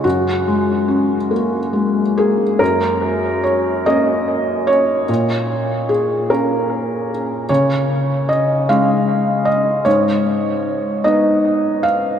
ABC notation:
X:1
M:6/8
L:1/8
Q:3/8=50
K:F#
V:1 name="Felt piano"
F3 z2 G | A2 c d2 c- | c2 G A2 z | c2 d e2 d |
c3 d2 e |]
V:2 name="Felt piano"
F,, G, C A, G, A, | F,,3 [A,C]3 | A,,3 [A,C]3 | C,3 [G,C]3 |
G,,3 [B,D]3 |]